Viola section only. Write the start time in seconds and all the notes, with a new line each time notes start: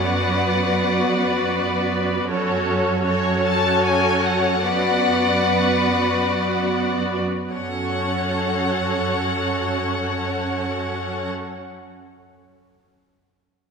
0.02 B3 F#4
2.30 C#4 F#4
3.05 C#4 F#4
4.66 B3 F#4
7.51 C#4 F#4